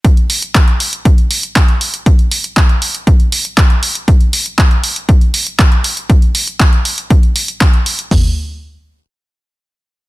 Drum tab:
HH |xxoxxxoxxxoxxxox|xxoxxxoxxxoxxxox|xxoxxxoxxxoxxxox|xxoxxxoxxxoxxxox|
CP |----x-------x---|----x-------x---|----x-------x---|----x-------x---|
FT |----------------|----------------|----------------|----------------|
BD |o---o---o---o---|o---o---o---o---|o---o---o---o---|o---o---o---o---|

HH |o---------------|
CP |----------------|
FT |o---------------|
BD |o---------------|